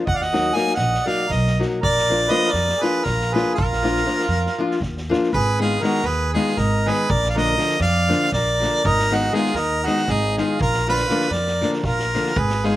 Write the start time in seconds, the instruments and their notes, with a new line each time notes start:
0.06 upright bass D#2, accordion D#5, harmonica F#5, kick
0.14 accordion D5, harmonica F5
0.21 accordion D#5, harmonica F#5, snare
0.33 nylon-string guitar F#3 A#3 D#4 F#4, snare
0.54 nylon-string guitar F#3 A#3 D#4 F#4, accordion F5, harmonica G#5, snare
0.67 snare
0.75 upright bass A#1, accordion D#5, harmonica F#5, snare
0.94 snare
1.03 nylon-string guitar F#3 A#3, accordion D5
1.07 nylon-string guitar D#4 F#4, harmonica F5, snare
1.27 upright bass B1, accordion A#4, kick
1.31 harmonica D#5, snare
1.47 snare
1.59 nylon-string guitar F#3 A#3 D#4 F#4, snare
1.81 upright bass A#1, accordion A#4, harmonica D5, kick
1.97 snare
2.10 nylon-string guitar F3 A#3 D4 F4
2.28 nylon-string guitar F3 A#3 D4 F4, accordion B4, harmonica D#5
2.32 snare
2.43 snare
2.47 accordion A#4
2.51 upright bass F2, harmonica D5, snare
2.69 snare
2.77 accordion G#4
2.81 nylon-string guitar F3 A#3 D4 F4, harmonica B4, snare
3.01 accordion F4, harmonica A#4
3.06 upright bass A#1, kick, snare
3.20 snare
3.31 nylon-string guitar F3 A#3 D4, accordion G#4, harmonica B4
3.36 nylon-string guitar F4, snare
3.55 upright bass A#1, accordion F4, harmonica A#4, kick
3.72 snare
3.83 nylon-string guitar F3 A#3 D4 F4, snare
3.96 snare
4.06 nylon-string guitar F3 A#3 D4 F4, snare
4.19 snare
4.28 upright bass F2, snare
4.46 snare
4.58 nylon-string guitar F3 A#3 D4 F4
4.71 snare
4.80 upright bass D#2, kick, snare
4.97 snare
5.09 nylon-string guitar F3 A#3 D4 F4, snare
5.23 snare
5.33 upright bass G#1, accordion G#4, harmonica B4, kick
5.59 nylon-string guitar D#3 G#3 B3 D#4, accordion F4, harmonica G#4, snare
5.82 nylon-string guitar D#3 G#3 B3 D#4, accordion F#4, harmonica A#4, snare
5.94 snare
6.04 upright bass D#2, accordion G#4, harmonica B4, snare
6.33 nylon-string guitar D#3 G#3 B3 D#4, accordion F4, harmonica G#4, snare
6.47 snare
6.57 upright bass G#1, accordion D#4, harmonica A#4, kick, snare
6.86 nylon-string guitar D#3 G#3 B3 D#4, accordion G#4, harmonica B4, snare
7.09 upright bass A#1, accordion A#4, harmonica D5, kick
7.24 accordion D5, snare
7.30 harmonica F5
7.35 nylon-string guitar D3 F3 A#3 D4, accordion A#4, harmonica D#5, snare
7.58 nylon-string guitar D3 F3 A#3 D4, snare
7.69 snare
7.80 upright bass F2, accordion D5, harmonica F5, snare
8.08 nylon-string guitar D3 F3 A#3 D4, snare
8.20 snare
8.32 upright bass A#1, accordion A#4, harmonica D5, kick, snare
8.60 nylon-string guitar D3 F3 A#3 D4, snare
8.84 upright bass G#1, accordion D#4, harmonica A#4, kick
8.99 snare
9.10 nylon-string guitar D#3 G#3 B3 D#4, accordion D#4, snare
9.14 harmonica F#4
9.32 nylon-string guitar D#3 G#3 B3 D#4, harmonica G#4, snare
9.37 accordion F4
9.46 snare
9.54 upright bass D#2, accordion D#4, harmonica A#4, snare
9.83 nylon-string guitar D#3 G#3 B3, accordion D#4, harmonica F#4, snare
9.87 nylon-string guitar D#4
9.97 snare
10.08 upright bass G#1, accordion D#4, harmonica G#4, kick, snare
10.37 nylon-string guitar D#3 G#3 B3 D#4, accordion F4, harmonica G#4, snare
10.59 upright bass A#1, accordion F4, harmonica A#4, kick
10.73 snare
10.87 nylon-string guitar D3 F3 A#3 D4, accordion F4, harmonica B4, snare
10.97 snare
11.09 nylon-string guitar D3 F3 A#3 D4, snare
11.21 snare
11.30 upright bass F2, accordion A#4, harmonica D5, snare
11.47 snare
11.61 nylon-string guitar D3 F3 A#3 D4, snare
11.73 snare
11.83 upright bass A#1, accordion F4, harmonica A#4, kick, snare
11.99 snare
12.14 nylon-string guitar D3 F3 A#3 D4, snare
12.26 snare
12.36 upright bass G#1, accordion G#4, harmonica B4, kick
12.49 snare
12.64 nylon-string guitar D#3 G#3 B3 D#4, accordion F4, harmonica G#4, snare